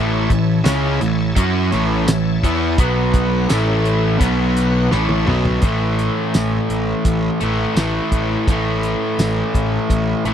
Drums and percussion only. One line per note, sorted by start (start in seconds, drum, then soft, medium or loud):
0.30 kick medium
0.30 closed hi-hat medium
0.65 snare loud
0.65 closed hi-hat loud
0.65 tambourine loud
1.01 closed hi-hat medium
1.36 kick medium
1.36 closed hi-hat loud
1.72 closed hi-hat medium
2.08 snare loud
2.08 closed hi-hat loud
2.08 tambourine loud
2.43 kick medium
2.43 closed hi-hat medium
2.78 kick loud
2.78 closed hi-hat loud
3.14 kick medium
3.14 closed hi-hat medium
3.50 snare loud
3.50 closed hi-hat loud
3.50 tambourine loud
3.85 closed hi-hat medium
4.21 kick medium
4.21 closed hi-hat medium
4.57 closed hi-hat medium
4.92 snare medium
5.09 high tom medium
5.27 mid tom medium
5.45 floor tom medium
5.62 kick loud
5.62 closed hi-hat medium
5.99 closed hi-hat medium
6.34 snare loud
6.34 closed hi-hat medium
6.34 tambourine loud
6.70 closed hi-hat medium
7.05 kick medium
7.05 closed hi-hat medium
7.41 closed hi-hat medium
7.77 snare loud
7.77 closed hi-hat medium
7.77 tambourine loud
8.12 kick medium
8.12 closed hi-hat medium
8.48 kick loud
8.48 closed hi-hat medium
8.83 closed hi-hat medium
9.19 snare loud
9.19 closed hi-hat medium
9.19 tambourine loud
9.54 kick medium
9.54 closed hi-hat medium
9.90 kick medium
9.90 closed hi-hat medium
10.25 closed hi-hat medium